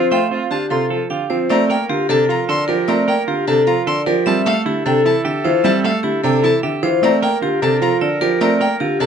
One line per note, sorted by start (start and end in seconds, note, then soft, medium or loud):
0.00 0.18 F3 loud
0.00 0.18 C4 medium
0.00 0.18 C5 medium
0.11 0.37 A3 medium
0.11 0.25 F4 medium
0.11 0.37 C5 medium
0.11 0.37 F5 medium
0.11 0.26 G5 medium
0.31 0.57 C4 medium
0.31 0.57 F4 medium
0.31 0.45 F4 medium
0.51 0.77 D3 medium
0.51 0.77 D4 medium
0.51 0.65 F4 medium
0.51 0.77 G4 medium
0.51 0.66 A5 medium
0.70 0.97 C3 medium
0.70 0.97 F4 medium
0.70 0.85 F4 medium
0.70 0.96 A4 medium
0.70 0.86 C6 medium
0.90 1.16 F3 medium
0.90 1.05 F4 soft
0.90 1.10 A4 medium
1.10 1.36 D3 medium
1.10 1.24 F4 soft
1.10 1.36 G4 medium
1.10 1.36 F5 medium
1.30 1.56 F3 loud
1.30 1.49 C4 medium
1.30 1.56 C5 medium
1.50 1.76 A3 loud
1.50 1.76 C4 medium
1.50 4.02 A#4 medium
1.50 1.75 D5 loud
1.50 1.65 A#5 medium
1.70 1.95 A#3 medium
1.70 1.95 A#4 loud
1.70 1.85 G5 loud
1.89 2.15 D3 medium
1.89 2.09 F4 loud
1.89 2.15 G4 medium
2.09 2.35 C3 loud
2.09 2.29 D4 medium
2.09 2.35 A4 loud
2.09 2.24 A5 medium
2.29 2.55 F3 medium
2.29 2.55 F4 medium
2.29 2.44 A#5 medium
2.49 2.74 D3 medium
2.49 2.68 A4 loud
2.49 2.74 D5 medium
2.49 2.64 C6 loud
2.68 2.94 F3 loud
2.68 2.94 G4 medium
2.68 2.94 A#4 loud
2.88 3.14 A3 loud
2.88 3.14 C4 medium
2.88 3.14 D5 loud
2.88 3.03 A#5 medium
3.08 3.34 A#3 medium
3.08 3.33 A#4 loud
3.08 3.23 G5 loud
3.28 3.53 D3 medium
3.28 3.47 F4 loud
3.28 3.53 G4 medium
3.47 3.73 C3 loud
3.47 3.67 D4 medium
3.47 3.73 A4 loud
3.47 3.62 A5 medium
3.67 3.93 F3 medium
3.67 3.93 F4 medium
3.67 3.82 A#5 medium
3.87 4.12 D3 medium
3.87 4.06 A4 loud
3.87 4.13 D5 medium
3.87 4.02 C6 loud
4.06 4.32 F3 loud
4.06 4.32 G4 medium
4.06 4.32 A#4 loud
4.26 4.52 G3 loud
4.26 4.52 C4 medium
4.26 6.79 A4 medium
4.26 4.52 E5 loud
4.26 4.41 A5 medium
4.46 4.72 A3 loud
4.46 4.72 A4 loud
4.46 4.61 F5 loud
4.66 4.91 D3 medium
4.66 4.85 E4 loud
4.66 4.91 G4 medium
4.86 5.11 C3 loud
4.86 5.05 D4 loud
4.86 5.11 A4 loud
4.86 5.00 G5 medium
5.05 5.31 E3 medium
5.05 5.31 E4 medium
5.05 5.20 A5 medium
5.25 5.51 D3 loud
5.25 5.51 G4 loud
5.25 5.51 E5 medium
5.44 5.71 E3 loud
5.44 5.70 F4 medium
5.44 5.70 C5 loud
5.64 5.90 G3 loud
5.64 5.90 C4 loud
5.64 5.90 E5 loud
5.64 5.79 A5 medium
5.84 6.10 A3 medium
5.84 6.10 A4 loud
5.84 5.99 F5 loud
6.03 6.30 D3 medium
6.03 6.23 E4 loud
6.03 6.29 G4 medium
6.24 6.49 C3 loud
6.24 6.49 D4 loud
6.24 6.49 A4 loud
6.24 6.39 G5 medium
6.43 6.69 E3 medium
6.43 6.63 E4 medium
6.43 6.58 A5 medium
6.63 6.89 D3 medium
6.63 6.89 G4 loud
6.63 6.89 E5 medium
6.83 7.09 E3 loud
6.83 7.09 F4 medium
6.83 7.09 C5 loud
7.02 7.28 A3 loud
7.02 7.28 C4 medium
7.02 9.06 A#4 medium
7.02 7.28 D5 loud
7.02 7.18 A#5 medium
7.22 7.48 A#3 medium
7.22 7.48 A#4 loud
7.22 7.37 G5 loud
7.42 7.68 D3 medium
7.42 7.62 F4 loud
7.42 7.68 G4 loud
7.62 7.88 C3 loud
7.62 7.82 D4 loud
7.62 7.88 A4 loud
7.62 7.77 A5 medium
7.82 8.07 F3 medium
7.82 8.07 F4 medium
7.82 7.96 A#5 loud
8.01 8.27 D3 medium
8.01 8.21 A4 loud
8.01 8.27 D5 medium
8.21 8.47 F3 loud
8.21 8.47 G4 medium
8.21 8.47 A#4 loud
8.41 8.67 A3 loud
8.41 8.66 C4 medium
8.41 8.67 D5 loud
8.41 8.55 A#5 medium
8.61 8.86 A#3 medium
8.61 8.86 A#4 loud
8.61 8.75 G5 medium
8.80 9.06 D3 medium
8.80 9.00 F4 loud
8.80 9.06 G4 loud
9.00 9.06 C3 loud
9.00 9.06 D4 loud
9.00 9.06 A4 loud
9.00 9.06 A5 medium